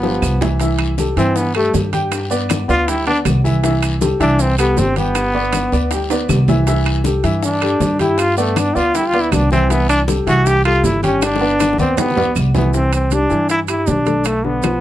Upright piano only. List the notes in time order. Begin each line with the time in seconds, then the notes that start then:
0.03 F3 F4 G4
0.41 E3 E4 E5
0.61 E3 E4 E5
0.98 G3 G4 A4
1.17 E3 E4 E5
1.55 G3 G4 A4
1.92 G3 G4 G5
2.30 B3 B4 D5
2.68 B3 B4 D5
2.88 G3 G4 G5
3.07 B3 B4 D5
3.44 E3 E4 E5
3.63 E3 E4 E5
4.01 G3 G4 A4
4.20 E3 E4 E5
4.58 G3 G4 A4
4.96 G3 G4 G5
5.34 B3 B4 D5
5.72 B3 B4 D5
5.92 G3 G4 G5
6.11 B3 B4 D5
6.49 E3 E4 E5
6.67 E3 E4 E5
7.05 G3 G4 A4
7.23 E3 E4 E5
7.62 G3 G4 A4
7.99 G3 G4 G5
8.37 B3 B4 D5
8.75 B3 B4 D5
8.94 G3 G4 G5
9.14 B3 B4 D5
9.52 E3 E4 E5
9.70 E3 E4 E5
10.07 G3 G4 A4
10.27 E3 E4 E5
10.65 G3 G4 A4
11.03 G3 G4 G5
11.41 B3 B4 D5
11.79 B3 B4 D5
11.97 G3 G4 G5
12.17 B3 B4 D5
12.55 E3 E4 E5
12.74 E3 E4
13.11 G3 G4
13.30 E3 E4
13.68 G3 G4
14.06 A3 A4
14.44 D3 D4
14.64 F3 F4